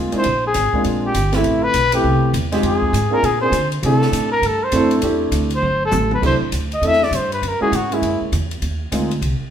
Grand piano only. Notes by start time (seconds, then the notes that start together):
Already playing: F4
0.12 G#3 A#3 C4 D4 E4
0.74 G#3 A#3 C4 D4 F4
1.34 A3 B3 C4 E4 G4
1.93 A3 B3 C4 E4 G4
2.52 G#3 C4 D#4 F4 G4
3.10 A#3 C4 D4 F4 G#4
3.42 A#3 C4 D4 F4 G#4
3.84 A3 C4 D4 E4 G4
4.73 A3 C4 D4 E4 A4
5.02 A3 C4 D4 E4 G4
6.22 A3 C4 D4 E4 G4
6.82 A3 C4 D4 E4 A4
7.60 G#3 A#3 C#4 E4 F#4
7.91 G#3 A#3 C#4 E4 G#4
8.92 G#3 A#3 C4 D#4 F4